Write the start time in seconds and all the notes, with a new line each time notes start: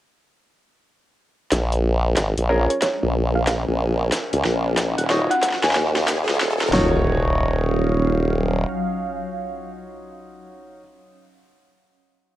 1.51 A#1 C#4, kick, snare, closed hi-hat, riser
1.72 closed hi-hat
2.17 G#1, kick, snare, closed hi-hat
2.25 A#4
2.37 A#1, closed hi-hat
2.49 C#4 F4 G#4 A#4
2.53 G#5
2.70 C#5, closed hi-hat
2.82 C#5, kick, snare, closed hi-hat
3.03 A#1
3.35 F5
3.47 F5, kick, snare, closed hi-hat
3.68 A#1
4.12 kick, snare, closed hi-hat
4.33 C#2, closed hi-hat
4.45 A#1, snare
4.70 F#4
4.78 kick, snare, closed hi-hat
4.98 D#1 F#5, closed hi-hat
5.10 D#4 F4 F#4 C#5, snare
5.16 F5
5.31 F#5, closed hi-hat
5.42 F#5, kick, snare, closed hi-hat
5.50 snare
5.54 snare
5.63 D#2 G#5, snare
5.71 snare
5.76 snare
5.96 snare
6.08 kick, snare, closed hi-hat
6.29 C#2, snare
6.41 D#1, snare
6.62 snare
6.73 D#1 C#4 D#4 F4 F#4 C#5, snare, impact
6.86 F#3
6.96 F5